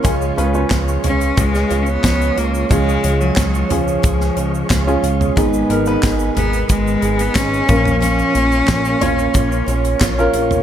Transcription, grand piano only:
X:1
M:4/4
L:1/16
Q:1/4=90
K:C#mix
V:1 name="Grand piano"
[CEG]2 [CEB] [CEB]6 z6 z | [CEG]4- [CEG] z [CEG]6 z [CEG]2 z | [B,DG]2 [B,DA] [B,DB]6 z4 z [CEA]2- | [CEA]4 z2 [CEc]6 z [CEA]2 z |]
V:2 name="Grand piano" clef=bass
[C,G,]6 z8 z2 | [C,G,]6 z8 z2 | [G,,D,]6 z8 [A,,E,]2- | [A,,E,]4 z12 |]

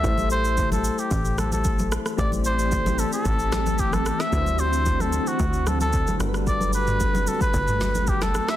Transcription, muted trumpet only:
X:1
M:4/4
L:1/16
Q:1/4=112
K:Ador
V:1 name="Muted trumpet"
e2 c3 A2 G3 A A3 z2 | d2 c4 A A4- A G A2 e- | e2 c3 A2 F3 A A3 z2 | d2 B4 A B4- B G A2 e |]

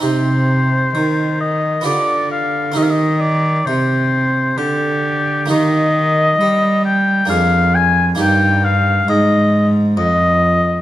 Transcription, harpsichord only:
X:1
M:3/4
L:1/8
Q:1/4=66
K:Cm
V:1 name="Harpsichord"
[CEG]4 [=B,FG]2 | [CEG]6 | [B,EG]4 [B,DA]2 | [B,EG]6 |]
V:2 name="Harpsichord" clef=bass
C,2 E,2 D,2 | E,2 C,2 D,2 | E,2 G,2 F,,2 | G,,2 A,,2 F,,2 |]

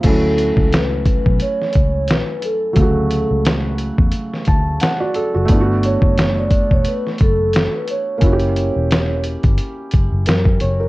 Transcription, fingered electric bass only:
X:1
M:4/4
L:1/16
Q:"Swing 16ths" 1/4=88
K:D
V:1 name="Fingered electric bass" clef=bass
D,,3 C,,4 B,,, z2 C,,3 z3 | D,,3 C,,4 E,, z2 D,,2 z3 F,,, | G,,,3 F,,,4 E,,, z2 F,,,3 z3 | F,,,3 E,,,4 G,,, z2 F,,, F,,, F,,2 F,,,2 |]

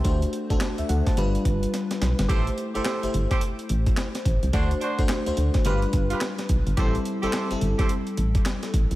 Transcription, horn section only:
X:1
M:4/4
L:1/16
Q:"Swing 16ths" 1/4=107
K:Am
V:1 name="Horn section"
z16 | [GAc] z2 [GAc] [GAc] z2 [GAc] z8 | [D^Fc] z [DFc] z4 z [=FGB] z2 [FGB] z4 | [GAc] z2 [GAc] [GAc] z2 [GAc] z8 |]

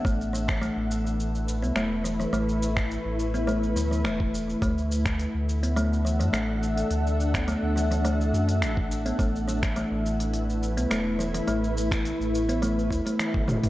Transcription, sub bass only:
X:1
M:4/4
L:1/16
Q:"Swing 16ths" 1/4=105
K:Dmix
V:1 name="Sub bass" clef=bass
A,,,4 z A,,,6 C,, E,,,3 z | A,,,4 z A,,,4- A,,, D,,2 E,,,3 z | D,,4 z D,,6 F,, A,,,3 z | D,,4 z D,,4- D,, F,,2 A,,,3 z |
A,,,4 z A,,,6 C,, E,,,3 z | A,,,4 z A,,,4- A,,, D,, z2 A,,, E,,, E,,, |]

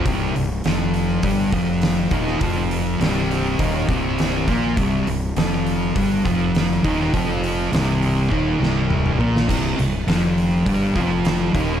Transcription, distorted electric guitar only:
X:1
M:4/4
L:1/8
Q:1/4=102
K:Cm
V:1 name="Distorted electric guitar" clef=bass
[C,,C,] C,, [F,,F,]2 [G,,G,] [F,,F,]2 [E,,E,] | [F,,F,]2 [C,,C,]2 [E,,E,] [C,,C,]2 [B,,B,] | [C,,C,] C,, [F,,F,]2 [G,,G,] [F,,F,]2 [E,,E,] | [F,,F,]2 [C,,C,]2 [E,,E,] [C,,C,]2 [B,,B,] |
[C,,C,] C,, [F,,F,]2 [G,,G,] [F,,F,]2 [E,,E,] |]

